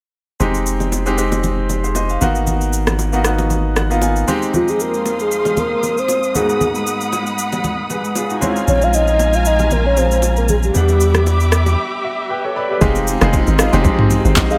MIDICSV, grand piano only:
0, 0, Header, 1, 2, 480
1, 0, Start_track
1, 0, Key_signature, -4, "minor"
1, 0, Tempo, 517241
1, 371, Time_signature, 4, 2, 24, 8
1, 13532, End_track
2, 0, Start_track
2, 0, Title_t, "Grand piano"
2, 0, Program_c, 0, 0
2, 369, Note_on_c, 0, 56, 77
2, 372, Note_on_c, 0, 60, 72
2, 377, Note_on_c, 0, 63, 74
2, 381, Note_on_c, 0, 67, 84
2, 546, Control_c, 0, 64, 127
2, 850, Note_off_c, 0, 56, 0
2, 852, Note_off_c, 0, 60, 0
2, 854, Note_off_c, 0, 63, 0
2, 856, Note_off_c, 0, 67, 0
2, 982, Note_on_c, 0, 56, 80
2, 986, Note_on_c, 0, 60, 74
2, 991, Note_on_c, 0, 63, 76
2, 995, Note_on_c, 0, 67, 91
2, 1069, Note_off_c, 0, 56, 0
2, 1071, Note_off_c, 0, 60, 0
2, 1073, Note_off_c, 0, 63, 0
2, 1076, Note_off_c, 0, 67, 0
2, 1090, Note_on_c, 0, 56, 77
2, 1093, Note_on_c, 0, 60, 69
2, 1097, Note_on_c, 0, 63, 70
2, 1102, Note_on_c, 0, 67, 86
2, 1577, Note_off_c, 0, 67, 0
2, 1708, Note_on_c, 0, 72, 60
2, 1714, Note_on_c, 0, 68, 51
2, 1807, Note_off_c, 0, 72, 0
2, 1812, Note_off_c, 0, 68, 0
2, 1817, Note_on_c, 0, 75, 71
2, 1821, Note_on_c, 0, 72, 60
2, 1863, Note_off_c, 0, 56, 0
2, 1865, Note_off_c, 0, 60, 0
2, 1867, Note_off_c, 0, 63, 0
2, 1940, Note_off_c, 0, 75, 0
2, 1942, Note_off_c, 0, 72, 0
2, 1949, Note_on_c, 0, 77, 64
2, 2049, Note_on_c, 0, 58, 87
2, 2053, Note_on_c, 0, 59, 80
2, 2057, Note_on_c, 0, 63, 82
2, 2061, Note_on_c, 0, 66, 98
2, 2063, Control_c, 0, 64, 0
2, 2174, Note_off_c, 0, 77, 0
2, 2246, Control_c, 0, 64, 127
2, 2727, Note_off_c, 0, 58, 0
2, 2729, Note_off_c, 0, 59, 0
2, 2731, Note_off_c, 0, 63, 0
2, 2733, Note_off_c, 0, 66, 0
2, 2900, Note_on_c, 0, 58, 84
2, 2904, Note_on_c, 0, 59, 78
2, 2908, Note_on_c, 0, 63, 74
2, 2912, Note_on_c, 0, 66, 91
2, 2988, Note_off_c, 0, 58, 0
2, 2990, Note_off_c, 0, 59, 0
2, 2992, Note_off_c, 0, 63, 0
2, 2994, Note_off_c, 0, 66, 0
2, 3006, Note_on_c, 0, 58, 81
2, 3011, Note_on_c, 0, 59, 73
2, 3016, Note_on_c, 0, 63, 69
2, 3019, Note_on_c, 0, 66, 87
2, 3489, Note_off_c, 0, 58, 0
2, 3491, Note_off_c, 0, 59, 0
2, 3494, Note_off_c, 0, 63, 0
2, 3494, Note_on_c, 0, 78, 67
2, 3496, Note_off_c, 0, 66, 0
2, 3617, Note_on_c, 0, 58, 80
2, 3621, Note_on_c, 0, 59, 72
2, 3627, Note_on_c, 0, 63, 73
2, 3631, Note_on_c, 0, 65, 93
2, 3716, Note_off_c, 0, 78, 0
2, 3732, Note_on_c, 0, 80, 69
2, 3962, Note_off_c, 0, 63, 0
2, 3967, Note_on_c, 0, 56, 92
2, 3968, Note_off_c, 0, 58, 0
2, 3970, Note_off_c, 0, 59, 0
2, 3972, Note_on_c, 0, 60, 84
2, 3975, Note_off_c, 0, 65, 0
2, 3976, Note_on_c, 0, 63, 81
2, 3980, Note_on_c, 0, 67, 98
2, 3985, Control_c, 0, 64, 0
2, 4082, Control_c, 0, 64, 127
2, 4166, Note_off_c, 0, 56, 0
2, 4169, Note_off_c, 0, 60, 0
2, 4170, Note_off_c, 0, 63, 0
2, 4172, Note_off_c, 0, 67, 0
2, 4178, Note_off_c, 0, 80, 0
2, 4202, Note_on_c, 0, 41, 64
2, 4208, Note_on_c, 0, 56, 57
2, 4214, Note_on_c, 0, 60, 59
2, 4221, Control_c, 0, 64, 0
2, 4221, Note_on_c, 0, 63, 55
2, 4227, Note_on_c, 0, 67, 66
2, 4385, Control_c, 0, 64, 127
2, 5853, Note_off_c, 0, 41, 0
2, 5856, Note_off_c, 0, 56, 0
2, 5859, Note_off_c, 0, 60, 0
2, 5863, Note_off_c, 0, 63, 0
2, 5866, Note_off_c, 0, 67, 0
2, 5882, Note_on_c, 0, 44, 63
2, 5888, Note_on_c, 0, 58, 58
2, 5894, Note_on_c, 0, 59, 59
2, 5900, Note_on_c, 0, 63, 58
2, 5904, Control_c, 0, 64, 0
2, 5906, Note_on_c, 0, 66, 71
2, 6084, Control_c, 0, 64, 127
2, 7307, Note_off_c, 0, 63, 0
2, 7310, Note_off_c, 0, 66, 0
2, 7336, Note_on_c, 0, 71, 59
2, 7340, Note_on_c, 0, 68, 50
2, 7562, Note_off_c, 0, 68, 0
2, 7562, Note_off_c, 0, 71, 0
2, 7576, Note_on_c, 0, 68, 67
2, 7582, Note_on_c, 0, 65, 59
2, 7699, Note_off_c, 0, 68, 0
2, 7702, Note_off_c, 0, 65, 0
2, 7706, Note_on_c, 0, 66, 63
2, 7713, Note_on_c, 0, 63, 54
2, 7769, Note_off_c, 0, 44, 0
2, 7772, Note_off_c, 0, 58, 0
2, 7775, Note_off_c, 0, 59, 0
2, 7802, Note_on_c, 0, 56, 75
2, 7809, Note_on_c, 0, 60, 72
2, 7819, Note_on_c, 0, 61, 70
2, 7824, Control_c, 0, 64, 0
2, 7827, Note_on_c, 0, 64, 68
2, 7882, Note_off_c, 0, 64, 0
2, 7884, Note_on_c, 0, 65, 83
2, 7933, Note_off_c, 0, 66, 0
2, 7937, Note_off_c, 0, 63, 0
2, 7968, Control_c, 0, 64, 127
2, 9218, Note_off_c, 0, 56, 0
2, 9222, Note_off_c, 0, 60, 0
2, 9227, Note_off_c, 0, 61, 0
2, 9248, Note_off_c, 0, 65, 0
2, 9249, Note_on_c, 0, 56, 48
2, 9253, Note_on_c, 0, 60, 44
2, 9258, Note_on_c, 0, 61, 42
2, 9262, Note_on_c, 0, 65, 52
2, 9963, Note_on_c, 0, 55, 61
2, 9970, Note_off_c, 0, 56, 0
2, 9972, Note_off_c, 0, 60, 0
2, 9972, Note_on_c, 0, 59, 60
2, 9975, Note_off_c, 0, 61, 0
2, 9977, Note_off_c, 0, 65, 0
2, 9980, Note_on_c, 0, 62, 60
2, 9984, Control_c, 0, 64, 0
2, 9990, Note_on_c, 0, 78, 71
2, 10145, Control_c, 0, 64, 127
2, 11178, Note_on_c, 0, 76, 68
2, 11392, Note_off_c, 0, 78, 0
2, 11398, Note_off_c, 0, 76, 0
2, 11416, Note_on_c, 0, 79, 68
2, 11418, Note_on_c, 0, 71, 61
2, 11422, Note_on_c, 0, 67, 52
2, 11540, Note_off_c, 0, 71, 0
2, 11543, Note_off_c, 0, 67, 0
2, 11548, Note_on_c, 0, 73, 72
2, 11554, Note_on_c, 0, 69, 59
2, 11637, Note_off_c, 0, 79, 0
2, 11649, Note_off_c, 0, 73, 0
2, 11651, Note_off_c, 0, 69, 0
2, 11658, Note_on_c, 0, 74, 69
2, 11658, Note_on_c, 0, 83, 72
2, 11663, Note_on_c, 0, 71, 59
2, 11775, Note_off_c, 0, 71, 0
2, 11780, Note_off_c, 0, 74, 0
2, 11789, Note_on_c, 0, 71, 59
2, 11796, Note_on_c, 0, 67, 52
2, 11850, Note_off_c, 0, 55, 0
2, 11855, Note_off_c, 0, 59, 0
2, 11859, Note_off_c, 0, 62, 0
2, 11878, Note_off_c, 0, 83, 0
2, 11889, Note_off_c, 0, 67, 0
2, 11892, Note_on_c, 0, 56, 94
2, 11895, Note_on_c, 0, 60, 81
2, 11900, Note_on_c, 0, 63, 80
2, 11902, Control_c, 0, 64, 0
2, 11903, Note_on_c, 0, 67, 97
2, 12014, Note_off_c, 0, 71, 0
2, 12072, Control_c, 0, 64, 127
2, 12184, Note_off_c, 0, 56, 0
2, 12186, Note_off_c, 0, 60, 0
2, 12188, Note_off_c, 0, 63, 0
2, 12190, Note_off_c, 0, 67, 0
2, 12261, Note_on_c, 0, 56, 94
2, 12265, Note_on_c, 0, 60, 85
2, 12269, Note_on_c, 0, 63, 89
2, 12274, Note_on_c, 0, 68, 104
2, 12637, Note_off_c, 0, 56, 0
2, 12639, Note_off_c, 0, 60, 0
2, 12640, Note_off_c, 0, 63, 0
2, 12643, Note_off_c, 0, 68, 0
2, 12739, Note_on_c, 0, 56, 97
2, 12744, Note_on_c, 0, 60, 87
2, 12749, Note_on_c, 0, 63, 86
2, 12752, Note_on_c, 0, 67, 100
2, 13025, Note_off_c, 0, 56, 0
2, 13027, Note_off_c, 0, 60, 0
2, 13029, Note_off_c, 0, 63, 0
2, 13031, Note_off_c, 0, 67, 0
2, 13225, Note_on_c, 0, 72, 70
2, 13230, Note_on_c, 0, 68, 56
2, 13326, Note_off_c, 0, 72, 0
2, 13329, Note_off_c, 0, 68, 0
2, 13334, Note_on_c, 0, 75, 74
2, 13340, Note_on_c, 0, 72, 60
2, 13458, Note_off_c, 0, 75, 0
2, 13462, Note_off_c, 0, 72, 0
2, 13465, Note_on_c, 0, 77, 72
2, 13532, Note_off_c, 0, 77, 0
2, 13532, End_track
0, 0, End_of_file